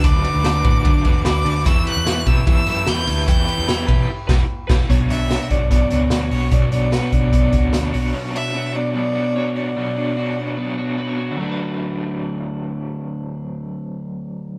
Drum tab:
CC |--------|--------|-----x-x|--------|
RD |xxxxxxxx|xxxxxxxx|xxxx----|--------|
HH |p------o|p------o|p-------|xxxxxxxo|
SD |--o---o-|--o--oo-|--o--o-o|--o---o-|
BD |o--ooo--|o--oo---|o--o-o-o|o--oo---|

CC |--------|--------|--------|--------|
RD |--------|--------|--------|--------|
HH |xxxxxxxo|--------|--------|--------|
SD |--o---o-|--------|--------|--------|
BD |o--ooo--|--------|--------|--------|

CC |--------|
RD |--------|
HH |--------|
SD |--------|
BD |--------|